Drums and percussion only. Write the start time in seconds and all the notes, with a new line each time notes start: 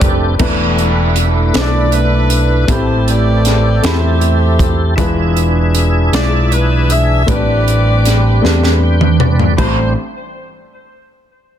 0.01 kick, closed hi-hat
0.39 kick, crash
0.78 closed hi-hat
1.16 closed hi-hat
1.54 snare, closed hi-hat
1.92 closed hi-hat
2.30 closed hi-hat
2.68 kick, closed hi-hat
3.08 closed hi-hat
3.45 snare, closed hi-hat
3.84 snare, closed hi-hat
4.21 closed hi-hat
4.59 kick, closed hi-hat
4.98 kick, closed hi-hat
5.37 closed hi-hat
5.75 closed hi-hat
6.13 snare, closed hi-hat
6.52 closed hi-hat
6.90 closed hi-hat
7.28 kick, closed hi-hat
7.68 closed hi-hat
8.05 snare, closed hi-hat
8.45 snare
8.64 snare
9.01 mid tom
9.20 mid tom
9.39 floor tom
9.58 kick, crash